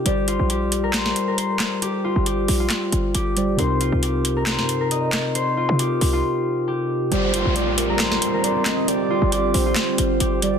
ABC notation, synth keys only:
X:1
M:4/4
L:1/8
Q:1/4=136
K:Gphr
V:1 name="Synth keys"
[G,Gcd]8- | [G,Gcd]6- [G,Gcd] [G,Gcd] | [C,CEB]8- | [C,CEB]8 |
[G,Gcd]8- | [G,Gcd]6- [G,Gcd] [G,Gcd] |]